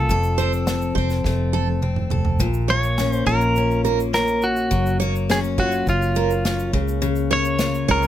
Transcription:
Already playing: A#3 F4 A4
0.09 F1 F2 A4, kick, shaker
0.23 shaker
0.38 C4 C5, shaker
0.53 shaker
0.67 A4, snare, shaker
0.82 shaker
0.95 F1 C4 C5, kick
1.10 snare, shaker
1.24 F1 A3, kick, snare
1.53 A4, high tom
1.82 C4, mid tom
1.96 mid tom
2.10 F1 A4, floor tom
2.25 floor tom
2.39 A#1 A#2, kick, shaker
2.54 shaker
2.68 A#3 C#5
2.83 shaker
2.98 C#4, snare, shaker
3.13 C5, shaker
3.26 A#1 F4 A#4 C#5, kick
3.41 shaker
3.56 C#4, shaker
3.71 shaker
3.85 A#3 A#4, shaker
4.00 shaker
4.14 C#4 A#4, snare, shaker
4.27 shaker
4.42 F#4, shaker
4.56 shaker
4.71 F#1 F#3, kick, shaker
4.86 shaker
5.00 A#3 C#5, shaker
5.16 shaker
5.29 C#4 G#4, snare, shaker
5.44 shaker
5.58 F4 F#4 C#5, kick
5.72 shaker
5.87 F#1 C#4 F4, kick, shaker
6.02 shaker
6.15 A#3 A#4, shaker
6.31 shaker
6.45 C#4, snare, shaker
6.59 shaker
6.73 C#2 C#3, kick
6.88 shaker
7.02 C#3, shaker
7.16 shaker
7.31 A#3 C#5
7.45 shaker
7.58 F4, snare, shaker
7.74 shaker
7.88 C#2 G#4 A#4 C#5, kick
8.02 shaker

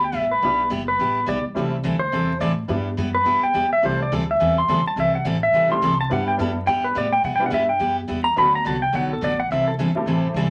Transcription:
Already playing: D2
0.04 G5
0.12 A1 G3 B3 E4 G4 E5
0.31 B4
0.42 B1 G3 B3 D4 E4 G4
0.70 F#1 G3 B3 E4 G4
0.88 B4
0.99 A1 G3 B3 E4 G4
1.26 B1 G3 B3 E4 G4 D5
1.44 muted upright bass stroke
1.55 C2 C3 E3 G3 A3 C4 E4 G4 A4
1.84 D2 C3 E3 G3 C4 E4 A4
1.99 C5
2.12 E2 C3 E3 G3 C4 E4 A4
2.40 A2 C3 E3 G3 C4 E4 A4 D5
2.68 G2 G3 B3 D4 E4 G4
2.97 F#2 G3 B3 E4 G4
3.14 B4
3.25 G2 G3 B3 E4 G4
3.43 G5, muted upright bass stroke
3.54 E2 G3 B3 E4 G4
3.73 E5
3.82 C2 C3 E3 G3 A3 C4 E4 G4 A4 C5
4.02 D5
4.12 D2 C3 E3 G3 C4 E4 A4
4.31 E5
4.40 E2 C3 E3 G3 C4 E4 A4
4.58 C6
4.68 D2 C3 E3 G3 C4 E4 A4
4.84 A5, muted upright bass stroke
4.96 C2 C3 E3 G3 C4 E4 A4 E5
5.15 F#5
5.25 A1 C3 E3 G3 C4 E4 A4
5.43 E5
5.52 B1 C3 E3 G3 C4 E4 A4
5.69 G3 A3 C4 E4 G4 C6
5.82 C2 C3 E3 G3 C4 E4 A4
6.01 A5
6.09 G2 G3 B3 D4 E4 G4 F#5
6.28 G5
6.37 F#2 G3 B3 D4 E4 G4 A4
6.66 G2 G3 B3 E4 G4 G5
6.84 B4
6.95 A2 G3 B3 E4 G4 D5
7.13 G5
7.24 B2 G3 B3 E4 G4 F#5
7.36 G3 B3 G5
7.40 D4 E4 G4
7.46 F#5
7.50 G2 G3 B3 E4 G4 E5
7.69 G5
7.79 F#2 G3 B3 E4 G4
8.08 E2 G3 B3 E4 G4
8.24 A#5
8.36 D2 D3 F#3 A3 B3 D4 F#4 A4 B5
8.55 A#5
8.64 C2 D3 F#3 B3 F#4 A4 A5
8.82 G5
8.93 B1 D3 F#3 B3 F#4 A4 F#5
9.13 A4
9.21 A1 D3 F#3 B3 F#4 A4 D5
9.40 F#5
9.51 C2 C3 E3 G3 C4 E4 A4 E5
9.68 A4
9.79 G1 C3 E3 G3 C4 E4 A4
9.95 A3 C4 E4 G4 A4, muted upright bass stroke
10.06 A1 C3 E3 G3 C4 E4 A4
10.34 C2 C3 E3 G3 C4 E4 A4

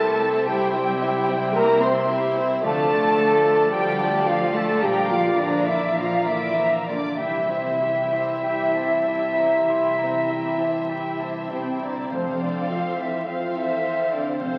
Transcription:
Already playing: C2 C3 G3 A3 C4 E4 G4 A4 A#4 C5 E5 A5
0.19 C4 E4 C5 E5
0.46 C2 C3 G3 E4 G4 C5 E5 G5
0.73 G3 C4 E4 C5 E5
1.01 C4 E4 G4 C5 E5
1.27 G3 C4 E4 C5 E5
1.52 C2 A#3 E4 G4 A#4 C5 E5 A#5
1.57 G4 A#5
1.80 C4 E4 C5 E5 C6
1.84 C6
2.07 E4 G4 C5 E5
2.35 C4 E4 C5 E5
2.62 D2 D3 F3 A3 D4 A4 D5 F5 A5
2.90 A3 D4 F4 D5 A5
3.16 F3 D4 A4 F5
3.44 A3 F4 D5 A5
3.71 D2 F3 G3 D4 G4 A4 D5 F5 G5
3.99 A3 F4 A4 D5 A5
4.25 F3 D4 F4 A4 D5 F5
4.53 A3 F4 A4 D5 A5
4.80 A#1 A#2 D3 F3 G3 A#3 D4 G4 F5 G5 A#5
5.08 F3 A#3 F4 D5 F5 D6
5.36 D3 F3 A#3 D4 D5 F5 A#5
5.40 D4
5.65 E3 A#3 E4 F4 A#4 D5 E5 D6
5.94 A#1 D3 F3 A#3 D4 D5 F5 A#5
5.99 F4
6.26 E3 A#3 E4 F4 A#4 D5 E5 D6
6.57 F3 D4 D5 F5 A#5
6.86 D3 A#3 D4 F4 A#4 D5 D6
7.16 C2 C3 E3 G3 E4 G4 E5 G5
7.49 G3 C4 E4 C5 E5
7.81 C4 E4 G4 E5 G5
8.11 C4 E4 G4 C5 E5
8.43 C2 E4 G4 C5 E5 G5
8.74 C4 E4 G4 C5 E5 A5
9.05 E4 G4 C5 E5 G5
9.35 C4 E4 G4 C5 E5 A#5
9.65 C2 C3 E4 G4 E5 G5 C6
9.97 G3 C4 E4 C5 E5 A#5
10.27 C4 E4 G4 E5 G5
10.57 C4 E4 G4 A5
10.62 C5 E5
10.88 C2 E4 G4 C5 G5
10.92 E5
11.19 C4 E4 G4 C5 E5 A5
11.50 C3 C4 E4 G4 C5 E5 G5
11.80 D3 C4 D4 E4 G4 C5 D5 E5 A#5
12.10 F2 C3 F3 A3 C4 A4 C5 D5 F5
12.40 D3 D4 F4 D5
12.68 F3 C4 F4 F5
12.97 E3 E4 A4 E5
13.25 F3 C4 F4 A4 C5 F5
13.54 E3 E4 A4 E5
13.83 C5
14.11 D3 D4 A4 D5
14.38 C3 F3 A3 C4 A4 C5 F5

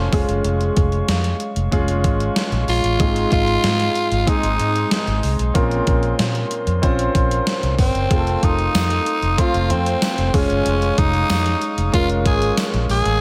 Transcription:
Already playing: A3 C#4 F4 A4 C5 F5 C6
0.12 G#3 C#4 F4 G#4 C#6, kick, open hi-hat
0.29 F#1, closed hi-hat
0.44 F1, closed hi-hat
0.61 closed hi-hat
0.77 F1, kick, closed hi-hat
0.92 closed hi-hat
1.08 F2, snare, closed hi-hat
1.24 closed hi-hat
1.40 closed hi-hat
1.56 F1, closed hi-hat
1.72 F1 G#3 C#4 F4 G#4, kick, closed hi-hat
1.88 closed hi-hat
2.04 G#1, kick, closed hi-hat
2.20 closed hi-hat
2.36 snare, closed hi-hat
2.52 A#1, closed hi-hat
2.68 A#1 F4, open hi-hat
2.84 A1, closed hi-hat
2.99 G#2 G#3 C4 D#4 G#4 D#5 C6, kick, closed hi-hat
3.16 closed hi-hat
3.32 G#1 F4, kick, closed hi-hat
3.47 closed hi-hat
3.64 G#2, snare, closed hi-hat
3.80 closed hi-hat
3.95 closed hi-hat
4.11 G#1, closed hi-hat
4.26 G#3 C4 D#4 G#4, kick, closed hi-hat
4.43 G#1, closed hi-hat
4.59 G#2, closed hi-hat
4.76 closed hi-hat
4.91 D#4, snare, closed hi-hat
5.07 G#1, closed hi-hat
5.23 C2, open hi-hat
5.39 B1, closed hi-hat
5.54 A#1 A#2 C4 C#4 F4 A#4 C5, kick, closed hi-hat
5.71 closed hi-hat
5.87 A#1, kick, closed hi-hat
6.03 closed hi-hat
6.19 A#2, snare, closed hi-hat
6.35 closed hi-hat
6.51 closed hi-hat
6.67 F2, closed hi-hat
6.82 A#1 C4 C#4 F4 C5, kick, closed hi-hat
6.99 closed hi-hat
7.15 A#1, kick, closed hi-hat
7.31 closed hi-hat
7.47 snare, closed hi-hat
7.63 C2, closed hi-hat
7.79 G1 C4, kick, open hi-hat
7.95 F#1, closed hi-hat
8.10 F1 A3 C4 F4 G#4 A4 F5, kick, closed hi-hat
8.17 A4
8.27 closed hi-hat
8.43 F1 D#4, kick, closed hi-hat
8.59 closed hi-hat
8.74 F2, snare, closed hi-hat, tambourine
8.90 closed hi-hat
9.06 closed hi-hat
9.22 F1, closed hi-hat
9.37 A3 C4 F4 C5, kick, closed hi-hat
9.54 F1, closed hi-hat
9.70 F2 C4, closed hi-hat
9.86 closed hi-hat
10.02 snare, closed hi-hat, tambourine
10.18 F1, closed hi-hat
10.33 F1 G#3 C#4 F4 G#4 C#6, kick, open hi-hat
10.50 F#1, closed hi-hat
10.66 F1, closed hi-hat
10.82 closed hi-hat
10.98 F1 D#4, kick, closed hi-hat
11.14 closed hi-hat
11.30 F2, snare, closed hi-hat, tambourine
11.46 closed hi-hat
11.62 closed hi-hat
11.78 F1, closed hi-hat
11.93 F1 G#3 C#4 F4 A#4, kick, closed hi-hat
12.09 closed hi-hat
12.26 G#1 G#4, kick, closed hi-hat
12.42 closed hi-hat
12.57 snare, closed hi-hat, tambourine
12.74 A#1, closed hi-hat
12.89 A#1 G#4, open hi-hat
13.05 A1, closed hi-hat

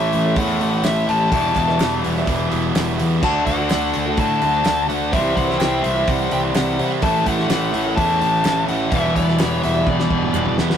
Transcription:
Already playing: A1 A2 E3 A3 C#4 E4 A4 C#5 E5
0.12 A1 A3 C#4 E4, open hi-hat
0.25 E4 A4 C#5 E5
0.36 E2 A2 E3 A3 C#4 E4 F#5, kick, open hi-hat
0.59 A1 A3 C#4 E4, open hi-hat
0.84 A1 E5, snare, clap, open hi-hat
1.06 A1 A3 C#4 E4 A5, open hi-hat
1.31 E1 E2 B2 E3 G3 B3 E4 G4 B4 D5 E5, kick, open hi-hat
1.55 E1 E3 G3 B3 E4, kick, clap, open hi-hat
1.67 G4 B4 D5 E5, snare
1.78 E1 E3 G3 B3 E4, snare, clap, open hi-hat
2.02 E1 E3 G3 B3 E4, open hi-hat
2.17 G4 B4 D5 E5
2.26 E1 E2 B2 E3 G3 B3 E4, kick, open hi-hat
2.50 E1 E3 G3 B3 E4, open hi-hat
2.75 E1, snare, clap, open hi-hat
2.98 E2 E3 G3 B3 E4, open hi-hat
3.22 D2 D3 A3 D4 F#4 A4 D5 F#5 A5, kick, crash
3.46 D2 D4 F#4 F#5, kick, open hi-hat
3.50 A3
3.58 F#4 A4 D5 F#5
3.70 D2 D3 A3 D4 F#4, snare, clap, open hi-hat
3.94 D2 D4 F#4, open hi-hat
3.98 A3
4.05 F#4 A4 D5 F#5
4.17 A2 D3 A3 D4 F#4 A5, kick, open hi-hat
4.42 D2 A3 D4 F#4, open hi-hat
4.65 D2, snare, clap, open hi-hat
4.89 D2 A3 D4 F#4 F#5, open hi-hat
5.11 C2 C3 E3 G3 C4 E4 G4 C5 E5, kick, open hi-hat
5.36 C2 G3 C4 E4 F#5, kick, open hi-hat
5.47 E4 G4 C5 E5, snare
5.58 C2 E3 G3 C4 G5, snare, clap, open hi-hat
5.62 E4
5.83 C2 G3 C4 E4 E5, open hi-hat
5.94 E4 G4 C5 E5
6.07 C2 C3 E3 G3 C4 E4 F#5, kick, open hi-hat
6.31 C2 G3 C4 E4 G5, open hi-hat
6.55 C2 F#5, snare, clap, open hi-hat
6.79 C3 G3 C4 E4, open hi-hat
7.02 A1 A2 E3 A3 C#4 E4 A4 C#5 E5 A5, kick, open hi-hat
7.25 A1 A3 C#4 E4 F#5, kick, open hi-hat
7.37 E4 A4 C#5 E5, snare
7.49 A1 E3 A3 C#4 E4, snare, clap, open hi-hat
7.73 A1 A3 C#4 E4, open hi-hat
7.85 E4 A4 C#5 E5
7.96 E2 A2 E3 A3 C#4 E4 A5, kick, open hi-hat
8.21 A1 A3 C#4 E4, open hi-hat
8.45 A1, snare, clap, open hi-hat
8.68 A1 A3 C#4 E4 F#5, open hi-hat
8.90 E1 E2 B2 E3 G3 G4 B4 D5 E5, kick, open hi-hat
8.94 B3 E4
9.15 E1 E3 G3 B3 E4 D5, kick, open hi-hat
9.27 G4 B4 D5 E5, snare
9.39 E1 E3 G3 B3 E4, snare, clap, open hi-hat
9.49 C#5
9.63 E1 E3 G3 B3 E4 E5, open hi-hat
9.74 G4 B4 D5 E5
9.86 E1 E2 B2 E3 G3 B3 E4 D5, kick, high tom
9.99 snare
10.10 E1 E3 G3 B3 E4, kick
10.22 mid tom
10.34 E1, clap, mid tom
10.46 mid tom
10.58 E2 E3 G3 B3 E4, snare
10.70 snare

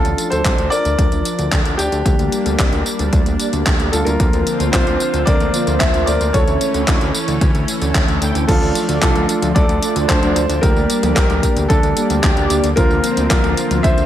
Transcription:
Already playing: F3 A3 D4 F4 A4 D5
0.05 D2, closed hi-hat, tambourine
0.18 closed hi-hat, tambourine
0.30 D2 A3 A4 C5, closed hi-hat, tambourine
0.45 C2, kick, clap, closed hi-hat, tambourine
0.58 D2, closed hi-hat, tambourine
0.70 A3 A#4 D5, tambourine
0.85 D2, closed hi-hat, tambourine
0.99 D2, kick, closed hi-hat, tambourine
1.12 D2, closed hi-hat, tambourine
1.25 F3 D4 F4 D5, closed hi-hat, tambourine
1.39 D2, closed hi-hat, tambourine
1.52 D2, kick, clap, closed hi-hat, tambourine
1.65 D2 A3 D4 F4 D5, closed hi-hat, tambourine
1.77 D2 D4 G4, closed hi-hat, tambourine
1.92 D2, closed hi-hat, tambourine
2.06 D2 G3 A#3 D4, kick, closed hi-hat, tambourine
2.19 D2, closed hi-hat, tambourine
2.32 closed hi-hat, tambourine
2.46 D2 A#3 D4 G4 D5, closed hi-hat, tambourine
2.59 C2, kick, clap, closed hi-hat, tambourine
2.72 D2, closed hi-hat, tambourine
2.86 A#3 D4 G4 D5, tambourine
2.99 D2, closed hi-hat, tambourine
3.13 D2, kick, closed hi-hat, tambourine
3.26 D2, closed hi-hat, tambourine
3.40 A#3 D4 G4 D5, closed hi-hat, tambourine
3.53 D2, closed hi-hat, tambourine
3.66 D2, kick, clap, closed hi-hat, tambourine
3.80 D2 A#3 D4 G4 D5, closed hi-hat, tambourine
3.92 D2 F4 A4, closed hi-hat, tambourine
4.05 D2 F4 A#4, closed hi-hat, tambourine
4.20 D2 D3 F3 A#3 C4 D4 F4, kick, closed hi-hat, tambourine
4.33 D2, closed hi-hat, tambourine
4.47 closed hi-hat, tambourine
4.60 D2 A#3 D4 F4 C5, closed hi-hat, tambourine
4.72 C2 F4 C5, kick, clap, closed hi-hat, tambourine
4.87 D2, closed hi-hat, tambourine
5.00 A#3 D4 F4, tambourine
5.13 D2, closed hi-hat, tambourine
5.26 D2 A#4 D5, kick, closed hi-hat, tambourine
5.40 D2, closed hi-hat, tambourine
5.54 A#3 D4 F4 C5, closed hi-hat, tambourine
5.67 D2, closed hi-hat, tambourine
5.79 D2 C5 E5, kick, clap, closed hi-hat, tambourine
5.94 D2 A#3 D4 F4 C5, closed hi-hat, tambourine
6.06 D2 A#4 D5, closed hi-hat, tambourine
6.21 D2, closed hi-hat, tambourine
6.33 D2 E3 A3 C#4 E4 A4 C#5, kick, closed hi-hat, tambourine
6.48 D2, closed hi-hat, tambourine
6.61 closed hi-hat, tambourine
6.74 D2 A3 C#4 E4 C#5, closed hi-hat, tambourine
6.88 D2, kick, clap, closed hi-hat, tambourine
7.01 D2, closed hi-hat, tambourine
7.14 A3 C#4 E4 C#5, tambourine
7.28 D2, closed hi-hat, tambourine
7.41 D2, kick, closed hi-hat, tambourine
7.55 D2, closed hi-hat, tambourine
7.68 closed hi-hat, tambourine
7.81 D2 A3 C#4 E4 E5, closed hi-hat, tambourine
7.95 D2, kick, clap, closed hi-hat, tambourine
8.08 D2, closed hi-hat, tambourine
8.22 D2 A3 C#4 E4 G5, closed hi-hat, tambourine
8.35 D2, closed hi-hat, tambourine
8.47 D2 F3 A3 D4 F4 A4 D5, kick, closed hi-hat, crash, tambourine
8.62 D2, tambourine
8.75 closed hi-hat, tambourine
8.89 D2 A3 D4 F4 D5, closed hi-hat, tambourine
9.01 C2 F4 A4, kick, clap, closed hi-hat, tambourine
9.15 D2, closed hi-hat, high tom, tambourine
9.29 A3 D4 F4 D5, closed hi-hat, tambourine
9.42 D2, closed hi-hat, high tom, tambourine
9.55 D2 A4 D5, kick, closed hi-hat, tambourine
9.69 D2, closed hi-hat, tambourine
9.82 A3 D4 F4 D5, closed hi-hat, tambourine
9.96 D2, closed hi-hat, tambourine
10.08 D2 A4 C5, kick, clap, closed hi-hat, tambourine
10.22 D2 A3 D4 F4 D5, closed hi-hat, high tom, tambourine
10.36 D2, closed hi-hat, tambourine
10.49 D2, closed hi-hat, tambourine
10.61 D2 G3 A#3 D4 G4 A#4 D5, kick, closed hi-hat, tambourine
10.76 D2, tambourine
10.90 closed hi-hat, tambourine
11.03 D2 A#3 D4 G4 D5, closed hi-hat, high tom, tambourine
11.15 C2 G4 A#4, kick, clap, closed hi-hat, tambourine
11.30 D2, closed hi-hat, high tom, tambourine
11.43 A#3 D4 G4 D5, kick, closed hi-hat, tambourine
11.56 D2, closed hi-hat, tambourine
11.69 D2 D4 A4, kick, closed hi-hat, tambourine
11.83 D2, closed hi-hat, tambourine
11.97 A#3 D4 G4 D5, closed hi-hat, tambourine
12.10 D2, closed hi-hat, tambourine
12.22 D2 D4 G4, kick, clap, closed hi-hat, tambourine
12.37 D2 A#3 D4 G4 D5, closed hi-hat, tambourine
12.50 D2, closed hi-hat, tambourine
12.64 D2, closed hi-hat, tambourine
12.76 D2 D3 F3 A#3 C4 D4 F4 A#4 C5, kick, closed hi-hat, tambourine
12.90 D2, tambourine
13.04 closed hi-hat, tambourine
13.17 D2 A#3 D4 F4 C5, closed hi-hat, tambourine
13.29 C2 F4 A#4, kick, clap, closed hi-hat, tambourine
13.44 D2, closed hi-hat, high tom, tambourine
13.57 A#3 D4 F4 C5, closed hi-hat, tambourine
13.71 D2, closed hi-hat, high tom, tambourine
13.83 D2 C5 E5, kick, closed hi-hat, tambourine
13.97 D2, closed hi-hat, tambourine

